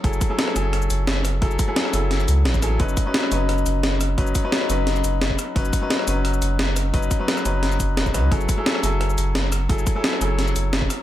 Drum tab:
HH |x-x-x-x-x-x-x-x-|x-x-x-x-x-x-x-x-|x-x-x-x-x-x-x-x-|x-x-x-x-x-x-x-x-|
SH |-xx---x--xx---x-|-xx---x--xx--xx-|-xx---x--xx---x-|-xx---x--xx---x-|
SD |----or--r---o-r-|----or--o---o-r-|----or--r---o-r-|----or--o---o-r-|
BD |o-o-------------|o-o----------o--|o-o-------------|o-o----------o--|

HH |x-x-x-x-x-x-x-x-|x-x-x-x-x-x-x-x-|x-x-x-x-x-x-x-x-|x-x-x-x-x-x-x-x-|
SH |-xx---x--xx---x-|-xx--xx--xx--xx-|-xx---x--xx---x-|-xx---x--xx---x-|
SD |----or--r---o-r-|----or--o---o-r-|----or--r---o-r-|----or--o---o-r-|
BD |o-o-------------|o-o-------o--o--|o-o-------------|o-o----------o--|